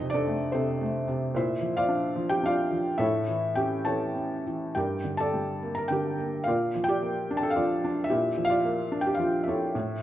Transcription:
felt piano
Already playing: F2 D#4 A4 C5 D#5
0.01 C3
0.10 D5
0.14 D4 A4
0.27 A3
0.52 C3 C4 A4 C5
0.81 A3
1.08 C3
1.34 A#2 E4 C5 E5
1.61 F3
1.77 F4 D5 F5
1.88 D4
2.16 F3
2.29 G4 G5
2.43 D4 F4 D5 F5
2.71 F3
2.98 A2 E4 A4 C#5 E5
3.28 E3
3.56 C#4 G4 G5
3.85 E3 A4 C#5 A5
4.16 C#4
4.47 E3
4.75 G2 G4 A#4 D5 G5
5.04 D3
5.17 A4 D5 A5
5.34 G3
5.63 A#3
5.75 A#4 A#5
5.88 D3 A#4 G5
5.92 G4
6.18 A#3
6.44 A#2 F4 F5
6.48 A#4 D5
6.75 F3
6.84 G5
6.89 G4 D5
7.03 A#3
7.31 D4
7.37 A5
7.43 A4
7.50 F5
7.56 F3 F4 D5
7.84 D4
8.04 E5
8.10 A#2 E4 G4
8.37 F3
8.45 F5
8.50 F4 D5
8.65 A#3
8.92 D4
9.01 G5
9.07 G4
9.15 F3 F5
9.20 F4
9.43 E5
9.48 D4 E4 A4 C#5
9.75 A2

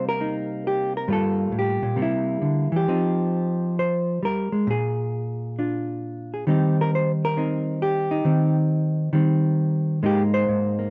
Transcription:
hollow-body jazz guitar
Already playing: C3 G3 A#3 D#4
0.09 A#4
0.20 A#3 D#4
0.67 G4
0.97 A#4
1.08 G2 G3 A#3 F4
1.13 A4
1.52 A2
1.59 G4
1.82 A#2
1.96 C3 G3 A#3
2.02 E4
2.42 D3
2.72 E3
2.76 G4
2.88 F3 C4 D#4
3.79 C5
4.23 G3 A#4
4.52 G#3
4.67 A#2 G#4
5.59 D4 F4
6.34 G#4
6.47 D#3 G3 C4 D#4 G4
6.81 A#4
6.95 C5
7.25 A#4
7.37 C4 D#4
7.82 G4
8.11 D#4
8.25 D#3 C4
9.13 D#3 G3 C4
10.03 G#2 G#3 A#3 D#4 G4
10.34 C5
10.48 G#2
10.79 A#3

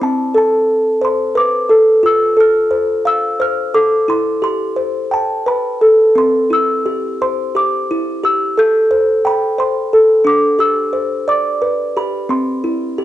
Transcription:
music box
0.02 C4 A5
0.34 A4 A5
1.02 C5 C6
1.35 B4 D6
1.69 A4
2.03 F4 E6
2.37 A4 F6
2.71 C5
3.05 F5 E6
3.40 C5 F6
3.74 A4 D6
4.08 E4 C6
4.42 G4 C6
4.76 C5
5.11 G5 A5
5.46 B4 B5
5.81 A4
6.16 C4 C6
6.50 E4 E6
6.86 G4
7.22 C5 C6
7.55 G4 D6
7.91 E4
8.24 G4 E6
8.57 A4 G6
8.91 C5
9.25 G5 B5
9.58 C5 C6
9.93 A4
10.25 D4 D6
10.59 G4 E6
10.93 C5
11.28 D5 D6
11.62 B4
11.96 G4 B5
12.29 C4 C6
12.64 E4
12.98 G4

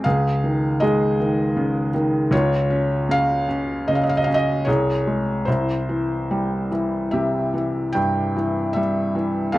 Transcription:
felt piano
0.04 C#2 G#4 F5
0.44 D#3
0.80 G#3 G#4 D#5
1.20 D#3
1.56 C#3
1.94 D#3
2.31 C#2 F4 C#5
2.70 C#4
3.09 C#3 F5
3.49 C#4
3.88 C#3 D#5
3.95 F5
4.03 D#5
4.09 F5
4.17 D#5
4.24 C#4 F5
4.34 D#5
4.65 C2 G#4 C#5
5.07 G#3
5.45 C2 E4 C5
5.89 E3
6.31 G3
6.72 E3
7.11 C3 G4 E5
7.54 E3
7.93 G2 G5
8.36 E3
8.73 G3 E5
9.15 E3
9.52 F2 F5

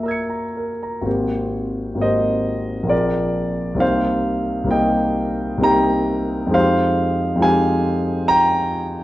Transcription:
grand piano
Already playing: F#2 A#3 E5 F#5 G#5 A#5
0.03 A#4 A#5 E6
0.08 G#6 C#7
0.30 A#5
0.57 A#4
0.83 A#5
1.01 G#1 A#3 C4
1.06 G4 A#4
1.95 G#1 A#3 C4
2.00 G4 A#4 C5 D#5
2.83 A#1 A#3 C4 F4
2.88 G#4 A#4 D5
3.75 C2 A#3 C4
3.79 D#4 G4 C5 F5
4.64 C2 A#3 C4
4.68 D#4 G4 D#5 G5
5.57 C2 A#3 C4
5.62 D#4 G4 G5 A#5
6.47 F2 G#3 C4
6.52 D#4 G4 C5 F5
7.36 F2 G#3 C4
7.41 D#4 G4 F5 G#5
8.28 G5 A#5

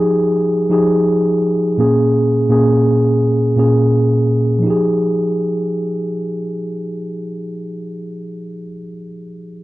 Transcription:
tine electric piano
Already playing: F3 D#4 G4 G#4
0.70 F3 D#4 G4 G#4
1.78 A#2 A#3 C#4 G#4
2.49 A#2 A#3 C#4 G#4
3.56 A#2 A#3 C#4 G#4
4.59 F3 D#4
4.67 G4 G#4

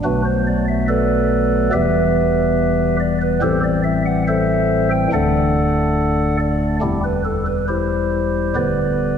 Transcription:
pipe organ
0.04 B1 B2 F#3 A3 B3 D4 F#4 B4
0.25 C5
0.47 D5
0.68 E5
0.88 A4 B4 D5
1.73 E1 E2 E3 G3 B3 G4 B4 E5
3.00 D5
3.22 B4
3.42 A1 A2 E3 G3 C4 G4 A4 C5
3.63 D5
3.84 E5
4.06 F#5
4.28 A4 C5 E5
4.91 G5
5.13 D1 D2 D3 A3 D4 A4 D5 F#5
6.40 D5
6.82 E1 E2 G3 C4 E4 G4
7.04 B4
7.25 A4
7.46 B4
7.68 E4 G4 C5
8.55 D1 D2 D3 G3 B3 G4 B4 D5

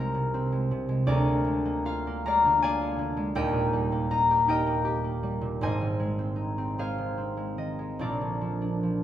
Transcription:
harp
Already playing: C2 C3 G#3 C4 D#4 G#4 A#4 C5 D#5
0.14 C3
0.34 C4
0.52 G#3
0.71 C3
0.89 G#3
1.07 D2 G#4 A#4 D5
1.27 D3
1.44 G#3
1.65 A#3
1.85 F4 F5
2.07 A#3
2.26 G#3 D5 F5 A#5
2.45 D3
2.62 A#3 D5 F5 G#5
2.82 G#3
2.99 D3
3.17 G#3
3.35 D#1 D#2 A#4 D#5 G5
3.53 A#2
3.73 G3
3.92 A#3
4.11 D#4 A#5
4.31 G4
4.48 D#4 A#4 D#5 G5
4.66 A#3
4.85 G4
5.04 A#3
5.23 G3
5.41 A#2
5.61 G#1 G#2 C5 D#5 G#5
5.81 D#3
6.00 G#3
6.19 C4
6.36 D#4
6.58 C4
6.78 G#3 G#4 C5 F5
6.98 D#3
7.18 C4
7.37 G#3
7.58 D#3 D#5
7.79 G#3
7.99 A#1 A#2 F4 A#4 D5
8.21 D3
8.41 F3
8.62 D4
8.83 F3

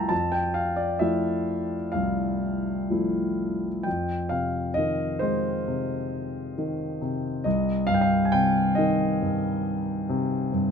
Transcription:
grand piano
Already playing: C2 F3 A3 E4 E5 F5 G5 A5 A#5
0.09 F2 A5
0.32 G5
0.54 F5
0.76 D5
0.99 F3 A3 E4 E5
1.92 C2 F5
2.90 F3 A3 E4
3.83 F2 G5
4.29 C3 F5
4.74 D#3 D#5
5.19 G#3 C5
5.68 C3
6.58 D#3
7.01 C3
7.44 C2 D#5
7.87 G2 F5
7.94 G5
8.01 F5
8.25 G#5
8.32 C3 G5
8.75 D#3 D#5
9.22 G2
10.09 C3
10.53 G2

